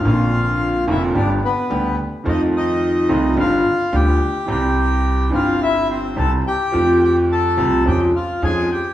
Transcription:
<<
  \new Staff \with { instrumentName = "Bandoneon" } { \time 4/4 \key f \major \tempo 4 = 108 <f' f''>4. <e' e''>8 <d' d''>8 <b b'>4 r8 | <ees' ees''>8 <ees' ees''>4. <f' f''>4 <g' g''>4 | <g' g''>4. <f' f''>8 <e' e''>8 <c' c''>8 <a' a''>8 <g' g''>8~ | <g' g''>8 <g' g''>8 <a' a''>4 <g' g''>8 <f' f''>8 <aes' aes''>8 <g' g''>8 | }
  \new Staff \with { instrumentName = "Grand piano" } { \clef bass \time 4/4 \key f \major <bes,, bes, d bes c' f'>4. <f,, f, d bes c' f'>8 <g,, g, d g b g'>8 r8 <d, d g b g'>8 r8 | <f, ees f a c' f'>4. <c, c ees a c' f'>8 <g,, g, d g b f'>8 r8 <d, d g b f'>8 r8 | <c, c e g c' g'>4. <g,, g, e g c' g'>4. <c, c e g c' g'>8 r8 | <f, f a c' g'>4. <c, c f a c' g'>8 <f, f aes des' aes'>8 r8 <f, f aes des' aes'>8 r8 | }
  \new Staff \with { instrumentName = "Upright bass" } { \clef bass \time 4/4 \key f \major bes,,4. f,,8 g,,8 r8 d,8 r8 | f,4. c,8 g,,8 r8 d,8 r8 | c,4. g,,4. c,8 r8 | f,4. c,8 f,8 r8 f,8 r8 | }
>>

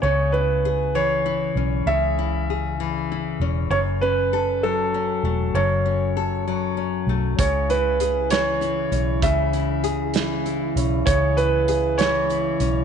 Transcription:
<<
  \new Staff \with { instrumentName = "Grand piano" } { \time 6/8 \key cis \phrygian \tempo 4. = 65 cis''8 b'4 cis''4. | e''2~ e''8 r8 | cis''8 b'4 a'4. | cis''2~ cis''8 r8 |
cis''8 b'4 cis''4. | e''2~ e''8 r8 | cis''8 b'4 cis''4. | }
  \new Staff \with { instrumentName = "Nylon-string guitar" } { \time 6/8 \key cis \phrygian cis8 e'8 gis'8 e8 e'8 cis'8 | cis8 e'8 gis'8 e8 e'8 cis'8 | fis,8 cis'8 a'8 fis8 cis'8 a8 | fis,8 cis'8 a'8 fis8 cis'8 a8 |
cis8 e'8 gis'8 e8 e'8 cis'8 | cis8 e'8 gis'8 e8 e'8 cis'8 | cis8 e'8 gis'8 e8 e'8 cis'8 | }
  \new Staff \with { instrumentName = "French horn section" } { \clef bass \time 6/8 \key cis \phrygian r2. | r2. | r2. | r2. |
<cis gis e'>2.~ | <cis gis e'>2.~ | <cis gis e'>2. | }
  \new Staff \with { instrumentName = "Fingered electric bass" } { \clef bass \time 6/8 \key cis \phrygian cis,2~ cis,8 b,,8 | cis,2~ cis,8 e,,8 | fis,,2~ fis,,8 e,,8 | fis,,2~ fis,,8 b,,8 |
cis,2~ cis,8 b,,8 | cis,2~ cis,8 b,,8 | cis,2~ cis,8 b,,8 | }
  \new DrumStaff \with { instrumentName = "Drums" } \drummode { \time 6/8 r4. r4. | r4. r4. | r4. r4. | r4. r4. |
<hh bd>8 hh8 hh8 <hh sn>8 hh8 hh8 | <hh bd>8 hh8 hh8 <hh sn>8 hh8 hh8 | <hh bd>8 hh8 hh8 <hh sn>8 hh8 hh8 | }
>>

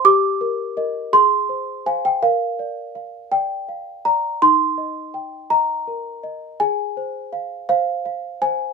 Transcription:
\new Staff \with { instrumentName = "Celesta" } { \time 6/8 \key ees \major \tempo 4. = 55 << { d'''4. c'''4 aes''16 g''16 | f''4. g''4 bes''8 | c'''4. bes''4. | aes''4. f''4 aes''8 | } \\ { g'8 bes'8 <bes' ees''>8 aes'8 c''8 <c'' f''>8 | bes'8 d''8 f''8 d''8 f''8 d''8 | ees'8 ees''8 g''8 ees''8 bes'8 ees''8 | aes'8 c''8 f''8 c''8 f''8 c''8 | } >> }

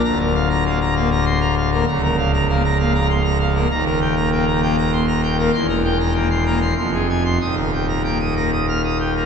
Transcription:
<<
  \new Staff \with { instrumentName = "Pipe organ" } { \time 3/4 \key bes \mixolydian \tempo 4 = 98 bes''16 bes'16 f''16 bes''16 f''16 bes''16 f''16 bes''16 c'''16 bes''16 f''16 bes'16 | \key ees \mixolydian bes''16 bes'16 f''16 bes''16 f''16 bes''16 f''16 bes''16 c'''16 bes''16 f''16 bes'16 | bes''16 bes'16 g''16 bes''16 g''16 bes''16 g''16 bes''16 c'''16 bes''16 g''16 bes'16 | c'''16 bes'16 g''16 bes''16 g''16 c'''16 bes''16 c'''16 c'''16 aes'16 aes''16 c'''16 |
ees'''16 bes'16 g''16 bes''16 g''16 ees'''16 bes''16 ees'''16 f'''16 ees'''16 g''16 bes'16 | }
  \new Staff \with { instrumentName = "Pipe organ" } { \time 3/4 \key bes \mixolydian << { d,4 bes16 r16 bes16 r4 bes16 | \key ees \mixolydian des,4 bes16 r16 bes16 r4 bes16 | ees,4 bes16 r16 bes16 r4 bes16 | e,4 bes16 r16 bes16 r16 f,4 |
ees,4 bes16 r16 bes16 r4 bes16 | } \\ { d,,2. | des,,2. | ees,,2. | e,,2 f,,4 |
ees,,2. | } >> }
>>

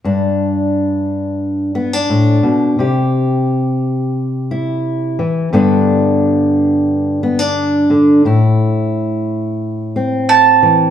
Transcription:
<<
  \new Staff \with { instrumentName = "Mandolin" } { \time 4/4 \key g \major \tempo 4 = 88 r1 | r1 | r1 | r2. a''4 | }
  \new Staff \with { instrumentName = "Steel-string acoustic guitar" } { \time 4/4 \key g \major << { d'2~ d'8 b16 d'4~ d'16 | g'2~ g'8 e'4. | <d b d'>2~ <d b d'>8 b16 d'4~ d'16 | e'2~ e'8 c'4. | } \\ { g,2. a,8 b,8 | c2.~ c8 e8 | g,2.~ g,8 d8 | a,2.~ a,8 e8 | } >> }
>>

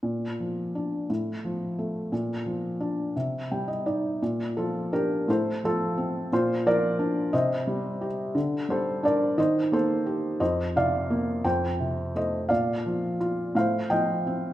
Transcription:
<<
  \new Staff \with { instrumentName = "Felt piano" } { \time 6/8 \key bes \major \tempo 4. = 58 r2. | r2 g''16 ees''16 d''8 | r8 <f' a'>8 <g' bes'>8 <a' c''>8 <f' a'>4 | <f' c''>8 <bes' d''>4 <c'' ees''>4 r8 |
r8 <a' c''>8 <bes' d''>8 <c'' ees''>8 <a' c''>4 | <c'' ees''>8 <d'' f''>4 <c'' g''>4 <c'' ees''>8 | <d'' f''>4 r8 <c'' f''>8 <ees'' g''>4 | }
  \new Staff \with { instrumentName = "Felt piano" } { \clef bass \time 6/8 \key bes \major bes,8 f8 d'8 a,8 f8 a8 | bes,8 f8 d'8 c8 g8 ees'8 | bes,8 f8 d'8 a,8 f8 c'8 | bes,8 f8 d'8 c8 g8 g'8 |
d8 g8 d'8 ees8 bes8 g'8 | f,8 c8 bes8 f,8 c8 a8 | bes,8 f8 f'8 a,8 f8 c'8 | }
>>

